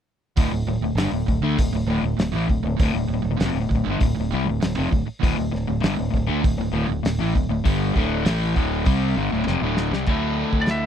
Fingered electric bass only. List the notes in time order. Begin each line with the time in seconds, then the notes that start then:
0.37 D1
0.52 D1
0.67 D1
0.81 D1
0.95 G1
1.12 D1
1.28 D1
1.42 D2
1.58 D1
1.73 D1
1.87 D1
2.03 D1
2.18 D1
2.34 A1
2.49 D1
2.63 D1
2.79 D1
2.94 D1
3.09 D1
3.24 D1
3.40 F1
3.55 D1
3.70 D1
3.87 G1
4.00 D1
4.18 D1
4.33 C2
4.49 D1
4.64 D1
4.78 F1
4.92 D1
5.07 muted fingered electric bass stroke
5.23 D1
5.39 D1
5.54 D1
5.70 D1
5.84 G1
6.00 D1
6.13 D1
6.28 D2
6.43 D1
6.57 D1
6.73 D1
6.89 D1
7.05 D1
7.19 A1
7.36 D1
7.50 D1
7.65 G1
7.96 D1
8.26 A1
8.55 D1
8.87 C2
9.17 G1
9.33 D1
9.47 F1
9.62 D1
9.91 C2
10.07 D2
10.52 D2